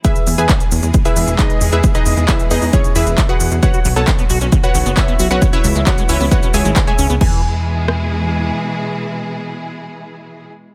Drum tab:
CC |----------------|----------------|----------------|----------------|
HH |xxoxxxoxxxoxxxox|xxoxxxooxxoxxxox|xxoxxxoxxxoxxxox|xxoxxxooxxoxxxox|
SH |xxxxxxxxxxxxx-xx|xxxxxxxxxxxxx-xx|xxxxxxxxxxxxx-xx|xxxxxxxxxxxxx-xx|
CP |----x-------x---|----x-------x---|----x-------x---|----x-------x---|
SD |----------------|----------------|----------------|----------------|
BD |o---o---o---o---|o---o---o---o---|o---o---o---o---|o---o---o---o---|

CC |x---------------|----------------|
HH |----------------|----------------|
SH |----------------|----------------|
CP |----------------|----------------|
SD |------r---------|----------------|
BD |o---------------|----------------|